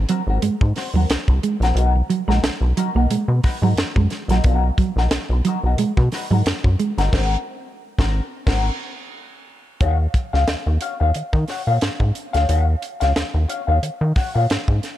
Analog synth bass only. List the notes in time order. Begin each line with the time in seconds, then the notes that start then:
0.27 G#1
0.43 G#2
0.61 G#2
0.94 D#2
1.10 C2
1.28 C2
1.60 A#1
1.75 B1
2.28 A#1
2.42 B1
2.61 B1
2.95 B1
3.10 B2
3.28 B2
3.62 G#2
3.76 F#2
3.96 F#2
4.28 A#1
4.44 B1
4.96 A#1
5.11 B1
5.30 B1
5.63 B1
5.77 B2
5.97 B2
6.31 G#2
6.46 F#2
6.64 F#2
6.98 G1
7.13 G#1
7.98 G#1
8.47 G#1
9.81 D#2
10.34 C#2
10.48 D#2
10.66 D#2
11.01 D#2
11.16 D#3
11.33 D#3
11.67 A#2
11.82 G#2
12.00 G#2
12.34 D2
12.49 D#2
13.02 C#2
13.16 D#2
13.34 D#2
13.68 D#2
13.83 D#3
14.01 D#3
14.35 A#2
14.50 G#2
14.68 G#2